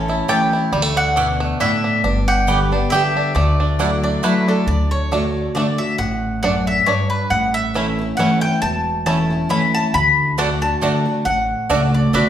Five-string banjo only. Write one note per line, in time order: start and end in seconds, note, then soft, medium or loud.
0.00 0.48 C#4 medium
0.09 0.52 E4 medium
0.29 0.73 G4 medium
0.53 0.73 E4 medium
0.73 0.82 G3 medium
0.82 1.16 A3 medium
0.97 1.16 D4 medium
1.16 1.60 D4 medium
1.40 2.00 A3 medium
1.60 1.84 D4 medium
1.84 2.04 D4 medium
2.04 2.72 D4 medium
2.28 2.88 G4 medium
2.48 3.11 B3 medium
2.72 3.16 D4 medium
2.92 3.36 G4 medium
3.17 3.60 D4 medium
3.36 3.99 A3 medium
3.60 3.79 D4 medium
3.80 4.03 D4 medium
4.04 4.47 D4 medium
4.24 4.68 A3 medium
4.48 4.68 D4 medium
5.12 5.22 A3 medium
5.12 5.23 D4 medium
5.56 5.66 A3 medium
5.56 5.67 D4 medium
6.44 6.54 A3 medium
6.44 6.54 D4 medium
6.87 6.98 A3 medium
6.87 6.98 D4 medium
7.75 7.86 A3 medium
7.75 7.86 C#4 medium
7.75 7.86 E4 medium
8.19 8.30 A3 medium
8.19 8.30 C#4 medium
8.19 8.30 E4 medium
9.06 9.17 A3 medium
9.06 9.17 C#4 medium
9.06 9.18 E4 medium
9.50 9.61 A3 medium
9.50 9.61 C#4 medium
9.50 9.61 E4 medium
10.38 10.49 A3 medium
10.38 10.49 D4 medium
10.82 10.93 A3 medium
10.82 10.93 D4 medium
11.70 11.81 A3 medium
11.70 11.81 D4 medium
12.14 12.25 A3 medium
12.14 12.25 D4 medium